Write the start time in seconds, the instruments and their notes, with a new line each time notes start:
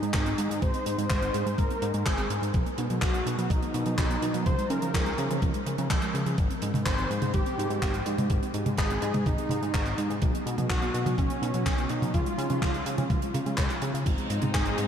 Already playing: analog synth lead D#4
0.02 analog synth bass G#2, synth arpeggio sound G#3, closed hi-hat
0.14 analog synth bass G#1, synth arpeggio sound G#3, kick, clap, closed hi-hat
0.26 synth arpeggio sound C4, closed hi-hat
0.38 analog synth bass G#2, synth arpeggio sound D#4, closed hi-hat
0.50 analog synth bass G#2, synth arpeggio sound G#3, closed hi-hat
0.62 analog synth bass G#1, synth arpeggio sound G#3, analog synth lead C5, kick, closed hi-hat
0.74 synth arpeggio sound C4, closed hi-hat
0.86 analog synth bass G#2, synth arpeggio sound D#4, closed hi-hat
0.98 analog synth bass G#2, synth arpeggio sound G#3, closed hi-hat
1.10 analog synth bass G#1, synth arpeggio sound G#3, analog synth lead C5, kick, clap, closed hi-hat
1.22 synth arpeggio sound C4, closed hi-hat
1.34 analog synth bass G#2, synth arpeggio sound D#4, closed hi-hat
1.46 analog synth bass G#2, synth arpeggio sound G#3, closed hi-hat
1.58 analog synth bass G#1, synth arpeggio sound G#3, analog synth lead A#4, kick, closed hi-hat
1.70 synth arpeggio sound C4, closed hi-hat
1.82 analog synth bass G#2, synth arpeggio sound D#4, closed hi-hat
1.94 analog synth bass G#2, synth arpeggio sound G#3, closed hi-hat
2.06 analog synth bass G#1, synth arpeggio sound G#3, analog synth lead G#4, kick, clap, closed hi-hat
2.18 synth arpeggio sound C4, clap, closed hi-hat
2.30 analog synth bass G#2, synth arpeggio sound D#4, closed hi-hat
2.42 analog synth bass G#2, synth arpeggio sound G#3, closed hi-hat
2.54 analog synth bass B1, synth arpeggio sound F#3, kick, closed hi-hat
2.66 synth arpeggio sound B3, closed hi-hat
2.78 analog synth bass B2, synth arpeggio sound D#4, closed hi-hat
2.90 analog synth bass B2, synth arpeggio sound F#3, closed hi-hat
3.02 analog synth bass B1, analog synth lead F#4, kick, clap, closed hi-hat
3.14 synth arpeggio sound B3, closed hi-hat
3.26 analog synth bass B2, synth arpeggio sound D#4, closed hi-hat
3.38 analog synth bass B2, synth arpeggio sound F#3, closed hi-hat
3.50 analog synth bass B1, synth arpeggio sound F#3, analog synth lead D#4, kick, closed hi-hat
3.62 synth arpeggio sound B3, closed hi-hat
3.74 analog synth bass B2, synth arpeggio sound D#4, closed hi-hat
3.86 analog synth bass B2, synth arpeggio sound F#3, closed hi-hat
3.98 analog synth bass B1, synth arpeggio sound F#3, kick, clap, closed hi-hat
4.10 synth arpeggio sound B3, closed hi-hat
4.22 analog synth bass B2, synth arpeggio sound D#4, closed hi-hat
4.34 analog synth bass B2, synth arpeggio sound F#3, closed hi-hat
4.46 analog synth bass C#2, analog synth lead C5, kick, closed hi-hat
4.58 synth arpeggio sound G#3, closed hi-hat
4.70 analog synth bass C#3, synth arpeggio sound C#4, analog synth lead A#4, closed hi-hat
4.82 analog synth bass C#3, synth arpeggio sound F3, closed hi-hat
4.94 analog synth bass C#2, synth arpeggio sound F3, kick, clap, closed hi-hat
5.06 synth arpeggio sound G#3, closed hi-hat
5.18 analog synth bass C#3, synth arpeggio sound C#4, closed hi-hat
5.30 analog synth bass C#3, synth arpeggio sound F3, closed hi-hat
5.42 analog synth bass C#2, synth arpeggio sound F3, kick, closed hi-hat
5.54 synth arpeggio sound G#3, closed hi-hat
5.66 analog synth bass C#3, synth arpeggio sound C#4, closed hi-hat
5.78 analog synth bass C#3, synth arpeggio sound F3, closed hi-hat
5.90 analog synth bass C#2, synth arpeggio sound F3, kick, clap, closed hi-hat
6.02 synth arpeggio sound G#3, clap, closed hi-hat
6.14 analog synth bass C#3, synth arpeggio sound C#4, closed hi-hat
6.26 analog synth bass C#3, synth arpeggio sound F3, closed hi-hat
6.38 analog synth bass G#1, synth arpeggio sound G#3, kick, closed hi-hat
6.50 synth arpeggio sound C4, closed hi-hat
6.62 analog synth bass G#2, synth arpeggio sound D#4, closed hi-hat
6.74 analog synth bass G#2, synth arpeggio sound G#3, closed hi-hat, high tom
6.86 analog synth bass G#1, synth arpeggio sound G#3, analog synth lead C5, kick, clap, closed hi-hat
6.98 synth arpeggio sound C4, closed hi-hat
7.10 analog synth bass G#2, synth arpeggio sound D#4, closed hi-hat
7.22 analog synth bass G#2, synth arpeggio sound G#3, closed hi-hat, high tom
7.34 analog synth bass G#1, synth arpeggio sound G#3, analog synth lead G4, kick, closed hi-hat
7.46 synth arpeggio sound C4, closed hi-hat
7.58 analog synth bass G#2, synth arpeggio sound D#4, closed hi-hat
7.70 analog synth bass G#2, synth arpeggio sound G#3, closed hi-hat
7.82 analog synth bass G#1, synth arpeggio sound G#3, kick, clap, closed hi-hat
7.94 synth arpeggio sound C4, closed hi-hat
8.06 analog synth bass G#2, synth arpeggio sound D#4, closed hi-hat
8.18 analog synth bass G#2, synth arpeggio sound G#3, closed hi-hat, high tom
8.30 analog synth bass G#1, synth arpeggio sound G#3, kick, closed hi-hat
8.42 synth arpeggio sound C4, closed hi-hat
8.54 analog synth bass G#2, synth arpeggio sound D#4, closed hi-hat
8.66 analog synth bass G#2, synth arpeggio sound G#3, closed hi-hat, high tom
8.78 analog synth bass G#1, synth arpeggio sound G#3, analog synth lead G#4, kick, clap, closed hi-hat
8.90 synth arpeggio sound C4, closed hi-hat
9.02 analog synth bass G#2, synth arpeggio sound D#4, closed hi-hat
9.14 analog synth bass G#2, synth arpeggio sound G#3, closed hi-hat, high tom
9.26 analog synth bass G#1, synth arpeggio sound G#3, analog synth lead D#4, kick, closed hi-hat, high tom
9.38 synth arpeggio sound C4, closed hi-hat
9.49 analog synth bass G#2, synth arpeggio sound D#4, closed hi-hat, high tom
9.62 analog synth bass G#2, synth arpeggio sound G#3, closed hi-hat
9.74 analog synth bass G#1, synth arpeggio sound G#3, kick, clap, closed hi-hat
9.86 synth arpeggio sound C4, clap, closed hi-hat
9.98 analog synth bass G#2, synth arpeggio sound D#4, closed hi-hat
10.10 analog synth bass G#2, synth arpeggio sound G#3, closed hi-hat
10.22 analog synth bass B1, synth arpeggio sound F#3, kick, closed hi-hat
10.34 synth arpeggio sound B3, closed hi-hat
10.46 analog synth bass B2, synth arpeggio sound D#4, closed hi-hat
10.58 analog synth bass B2, synth arpeggio sound F#3, closed hi-hat, high tom
10.70 analog synth bass B1, synth arpeggio sound F#3, analog synth lead F#4, kick, clap, closed hi-hat
10.82 synth arpeggio sound B3, closed hi-hat
10.94 analog synth bass B2, synth arpeggio sound D#4, closed hi-hat
11.06 analog synth bass B2, synth arpeggio sound F#3, closed hi-hat, high tom
11.18 analog synth bass B1, synth arpeggio sound F#3, analog synth lead C#4, kick, closed hi-hat
11.30 synth arpeggio sound B3, closed hi-hat
11.42 analog synth bass B2, synth arpeggio sound D#4, closed hi-hat
11.54 analog synth bass B2, synth arpeggio sound F#3, closed hi-hat
11.66 analog synth bass B1, kick, clap, closed hi-hat
11.78 synth arpeggio sound B3, closed hi-hat
11.89 analog synth bass B2, analog synth lead D#4, synth arpeggio sound D#4, closed hi-hat
12.02 analog synth bass B2, synth arpeggio sound F#3, closed hi-hat, high tom
12.14 analog synth bass C#2, synth arpeggio sound F3, analog synth lead F4, kick, closed hi-hat
12.26 synth arpeggio sound G#3, closed hi-hat
12.38 analog synth bass C#3, synth arpeggio sound C#4, closed hi-hat
12.50 analog synth bass C#3, synth arpeggio sound F3, closed hi-hat, high tom
12.62 analog synth bass C#2, synth arpeggio sound F3, kick, clap, closed hi-hat
12.74 synth arpeggio sound G#3, closed hi-hat
12.86 analog synth bass C#3, synth arpeggio sound C#4, closed hi-hat
12.98 analog synth bass C#3, synth arpeggio sound F3, closed hi-hat, high tom
13.10 analog synth bass C#2, synth arpeggio sound F3, kick, closed hi-hat, high tom
13.22 synth arpeggio sound G#3, closed hi-hat
13.34 analog synth bass C#3, synth arpeggio sound G#4, closed hi-hat, high tom
13.46 analog synth bass C#3, synth arpeggio sound G#3, closed hi-hat
13.58 analog synth bass C#2, synth arpeggio sound C#5, kick, clap, closed hi-hat
13.70 synth arpeggio sound F4, clap, closed hi-hat
13.82 analog synth bass C#3, synth arpeggio sound C#5, closed hi-hat
13.94 analog synth bass C#3, synth arpeggio sound F5, closed hi-hat
14.06 analog synth bass G#1, string section G#3 C4 D#4, synth arpeggio sound G#3, kick, closed hi-hat, crash
14.18 synth arpeggio sound C4, closed hi-hat
14.30 analog synth bass G#2, synth arpeggio sound D#4, closed hi-hat
14.42 analog synth bass G#2, synth arpeggio sound G#3, closed hi-hat, high tom
14.54 analog synth bass G#1, synth arpeggio sound G#3, analog synth lead G#4, kick, clap, closed hi-hat
14.66 synth arpeggio sound C4, closed hi-hat
14.78 analog synth bass G#2, synth arpeggio sound D#4, closed hi-hat